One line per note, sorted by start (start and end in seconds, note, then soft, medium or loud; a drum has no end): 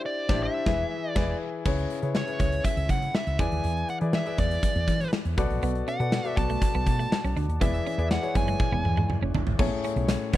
0.06 0.43 D5 medium
0.29 0.46 A1 loud
0.29 0.46 D4 medium
0.29 0.46 G4 medium
0.29 0.46 C5 loud
0.29 0.46 D5 medium
0.29 kick loud
0.29 snare loud
0.35 0.49 E4 loud
0.43 1.09 E5 medium
0.66 0.84 E1 loud
0.66 0.83 E3 medium
0.66 0.83 E4 loud
0.66 0.83 G#4 medium
0.66 0.84 B4 medium
0.66 0.84 E5 loud
0.66 kick loud
0.66 snare loud
1.09 1.38 D5 medium
1.16 1.33 E1 loud
1.16 1.33 E4 medium
1.16 1.33 G#4 medium
1.16 1.33 B4 medium
1.16 kick loud
1.16 snare loud
1.16 crash medium
1.65 1.84 C#2 medium
1.65 2.36 C#3 medium
1.65 1.92 E4 medium
1.65 1.92 G#4 medium
1.65 1.93 B4 medium
1.65 1.93 C#5 medium
1.65 kick loud
1.65 crash medium
1.78 closed hi-hat soft
1.90 closed hi-hat medium
2.02 2.21 C#3 medium
2.02 2.21 E4 medium
2.02 2.21 G#4 medium
2.02 2.21 B4 medium
2.02 2.21 C#5 medium
2.02 closed hi-hat soft
2.15 2.39 C#5 medium
2.15 snare loud
2.27 2.99 E4 medium
2.27 2.99 G#4 medium
2.27 3.00 B4 medium
2.27 3.00 C#5 medium
2.27 closed hi-hat soft
2.39 2.59 C#2 medium
2.39 2.65 C#5 medium
2.39 kick medium
2.39 closed hi-hat medium
2.52 closed hi-hat medium
2.64 2.88 E5 medium
2.64 kick medium
2.64 closed hi-hat loud
2.77 2.86 C#2 loud
2.77 closed hi-hat medium
2.89 3.08 C#3 medium
2.89 3.13 F#5 medium
2.89 kick medium
2.89 closed hi-hat medium
3.02 closed hi-hat soft
3.15 3.40 E5 medium
3.15 snare loud
3.27 3.36 C#2 medium
3.27 closed hi-hat soft
3.39 3.49 E2 medium
3.39 4.10 E3 medium
3.39 3.89 E4 medium
3.39 3.89 G#4 medium
3.39 3.89 B4 medium
3.39 3.89 D5 medium
3.39 3.89 G#5 loud
3.39 kick loud
3.39 closed hi-hat medium
3.52 3.61 D#2 medium
3.52 closed hi-hat soft
3.64 3.83 E2 medium
3.64 closed hi-hat medium
3.77 closed hi-hat soft
3.89 3.96 F#5 medium
3.89 closed hi-hat medium
4.01 4.20 E3 medium
4.01 4.19 E4 medium
4.01 4.19 G#4 medium
4.01 4.19 B4 medium
4.01 4.19 D5 medium
4.01 closed hi-hat soft
4.13 4.39 E5 medium
4.13 snare loud
4.25 4.97 E4 medium
4.25 4.98 G#4 medium
4.25 4.98 B4 medium
4.25 4.98 D5 medium
4.25 closed hi-hat soft
4.38 4.57 E2 medium
4.38 5.09 D5 medium
4.38 kick medium
4.38 closed hi-hat medium
4.51 closed hi-hat medium
4.63 kick medium
4.63 closed hi-hat loud
4.76 4.85 E2 loud
4.76 closed hi-hat medium
4.88 5.06 E3 medium
4.88 kick medium
4.88 closed hi-hat medium
5.01 closed hi-hat medium
5.13 snare loud
5.25 5.35 E2 medium
5.25 closed hi-hat medium
5.37 5.47 B1 loud
5.37 6.08 B2 medium
5.37 5.87 F#4 medium
5.37 5.87 A4 medium
5.37 5.87 B4 medium
5.37 5.88 D5 loud
5.37 kick loud
5.37 closed hi-hat medium
5.50 5.59 A#1 medium
5.50 closed hi-hat soft
5.62 5.81 B1 loud
5.62 5.73 B3 medium
5.62 closed hi-hat medium
5.75 closed hi-hat soft
5.88 5.98 C#4 medium
5.88 6.37 F#5 medium
5.88 closed hi-hat medium
5.99 6.18 B2 medium
5.99 6.17 F#4 medium
5.99 6.18 A4 medium
5.99 6.18 B4 medium
5.99 6.18 D5 medium
5.99 muted clean electric guitar stroke soft
5.99 closed hi-hat soft
6.12 muted clean electric guitar stroke soft
6.12 snare loud
6.12 tambourine medium
6.24 6.96 F#4 medium
6.24 6.96 A4 medium
6.24 6.97 B4 medium
6.24 6.97 D5 medium
6.24 closed hi-hat soft
6.37 6.56 B1 loud
6.37 6.47 B3 medium
6.37 6.60 A5 loud
6.37 kick medium
6.37 closed hi-hat medium
6.49 6.60 A3 medium
6.49 closed hi-hat medium
6.62 7.64 A5 loud
6.62 kick medium
6.62 closed hi-hat loud
6.75 6.84 B1 loud
6.75 6.85 B3 medium
6.75 closed hi-hat medium
6.86 7.05 B2 medium
6.86 muted clean electric guitar stroke soft
6.86 kick medium
6.86 closed hi-hat medium
6.99 7.09 A3 medium
6.99 closed hi-hat soft
7.12 muted clean electric guitar stroke soft
7.12 snare loud
7.12 tambourine medium
7.24 7.33 B1 medium
7.24 7.34 C#4 medium
7.24 closed hi-hat soft
7.36 7.45 D2 medium
7.36 7.46 D4 medium
7.36 closed hi-hat medium
7.48 7.58 D#2 medium
7.48 closed hi-hat soft
7.60 7.80 E1 medium
7.60 8.31 E3 medium
7.60 7.71 B3 medium
7.60 7.88 E4 medium
7.60 7.88 G#4 medium
7.60 7.88 B4 medium
7.60 7.88 D5 medium
7.60 8.07 E5 medium
7.60 kick loud
7.60 closed hi-hat medium
7.74 closed hi-hat soft
7.87 7.96 C#4 medium
7.87 closed hi-hat medium
7.98 8.17 E2 medium
7.98 8.16 E4 medium
7.98 8.16 G#4 medium
7.98 8.16 B4 medium
7.98 8.16 D5 medium
7.98 muted clean electric guitar stroke soft
7.98 closed hi-hat soft
8.11 8.34 F#5 medium
8.11 muted clean electric guitar stroke soft
8.11 snare loud
8.11 tambourine medium
8.22 8.94 E4 medium
8.22 8.94 G#4 medium
8.22 8.95 B4 medium
8.22 8.95 C#5 medium
8.22 closed hi-hat soft
8.35 8.54 F#1 loud
8.35 8.45 B3 medium
8.35 9.31 G#5 medium
8.35 kick medium
8.35 closed hi-hat medium
8.48 8.58 G#3 medium
8.48 closed hi-hat medium
8.60 kick loud
8.60 high tom medium
8.72 8.81 E1 loud
8.72 8.83 B3 medium
8.85 9.03 E2 medium
8.85 muted clean electric guitar stroke soft
8.85 mid tom medium
8.97 9.07 G#3 medium
8.97 mid tom medium
9.10 muted clean electric guitar stroke soft
9.10 mid tom medium
9.22 9.31 F#1 medium
9.22 9.32 C#4 medium
9.34 9.44 G1 medium
9.34 9.45 D4 medium
9.34 floor tom loud
9.46 9.56 G#1 medium
9.46 floor tom medium
9.59 9.69 A1 loud
9.59 10.30 A2 medium
9.59 9.70 B3 medium
9.59 10.31 C#4 medium
9.59 10.31 E4 medium
9.59 10.31 G#4 medium
9.59 10.31 A4 medium
9.59 10.31 C#5 loud
9.59 kick loud
9.59 crash loud
9.84 9.94 C#4 medium
9.84 closed hi-hat medium
9.96 10.15 B1 loud
9.96 muted clean electric guitar stroke soft
9.96 closed hi-hat medium
10.08 muted clean electric guitar stroke soft
10.08 snare loud
10.08 closed hi-hat medium
10.08 tambourine medium
10.33 10.37 C#2 medium
10.33 10.37 B3 medium
10.33 kick medium
10.33 closed hi-hat medium